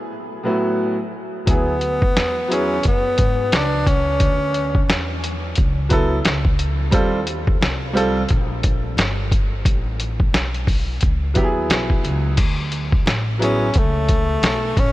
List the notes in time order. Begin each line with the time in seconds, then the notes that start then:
0.43 A2 F#3 B3 E4 F#4
1.46 D2 F#3 B3 E4 G#4, kick, closed hi-hat
1.50 B3
1.81 closed hi-hat
2.02 kick
2.16 E2, snare, closed hi-hat
2.48 F#3 B3 E4 G#4, closed hi-hat
2.53 C#4
2.83 F#2, kick, closed hi-hat
2.87 B3
3.18 G#2, kick, closed hi-hat
3.52 C#2 D4, snare, closed hi-hat
3.87 C#4, kick, closed hi-hat
4.20 D2, kick, closed hi-hat
4.54 closed hi-hat
4.75 kick
4.88 E2, snare, closed hi-hat
5.24 closed hi-hat
5.55 C#2, kick, closed hi-hat
5.89 F#3 B3 E4 A4, kick, closed hi-hat
6.25 C#2, snare, closed hi-hat
6.45 kick
6.59 closed hi-hat
6.91 D#2 G3 C4 F4 A4, kick, closed hi-hat
7.27 closed hi-hat
7.47 kick
7.61 C2, snare, closed hi-hat
7.93 G3 C4 F4 A4, closed hi-hat
8.29 A#1, kick, closed hi-hat
8.63 kick, closed hi-hat
8.97 G1, snare, closed hi-hat
9.31 kick, closed hi-hat
9.65 A1, kick, closed hi-hat
10.00 closed hi-hat
10.20 kick
10.33 B1, snare, closed hi-hat
10.54 closed hi-hat
10.67 kick, open hi-hat
11.01 C#2, kick, closed hi-hat
11.34 D#2 F#3 B3 E4 G4, kick, closed hi-hat
11.43 G#4
11.70 B1, snare, closed hi-hat
11.90 kick
12.04 C#2, closed hi-hat
12.37 D2, kick, closed hi-hat, crash
12.72 closed hi-hat
12.92 kick
13.06 A1, snare, closed hi-hat
13.39 F#3 B3 E4 G#4, closed hi-hat
13.43 C#4
13.74 C#2 A3, kick, closed hi-hat
14.09 kick, closed hi-hat
14.42 B1, snare, closed hi-hat
14.77 A1 C#4, kick, closed hi-hat